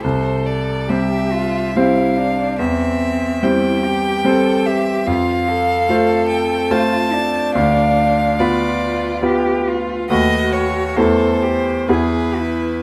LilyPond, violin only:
\new Staff \with { instrumentName = "Violin" } { \time 3/4 \key c \major \tempo 4 = 71 c''8 d''8 e''4 f''4 | e''4 g''4. e''8 | f''4. g''8 a''4 | f''4 d''4 r4 |
dis''8 cis''8 c''4 b'4 | }